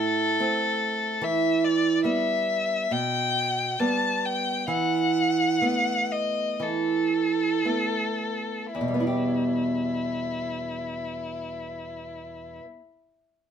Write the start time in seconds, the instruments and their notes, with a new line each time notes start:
Already playing: nylon-string guitar A2, violin A4
0.40 nylon-string guitar A3 C4
1.21 nylon-string guitar E3, violin E5
1.64 violin D5
2.04 nylon-string guitar G3 B3, violin E5
2.91 nylon-string guitar B2, violin G5
3.79 nylon-string guitar G3 B3, violin A5
4.25 violin G5
4.68 nylon-string guitar E3, violin F#5
5.61 nylon-string guitar A3 B3
6.12 violin D#5
6.60 nylon-string guitar E3, violin A4
7.65 nylon-string guitar A3 B3
8.75 nylon-string guitar E2, violin E4
8.81 nylon-string guitar B2
8.88 nylon-string guitar G3
8.94 nylon-string guitar B3
9.00 nylon-string guitar E4
9.07 nylon-string guitar G4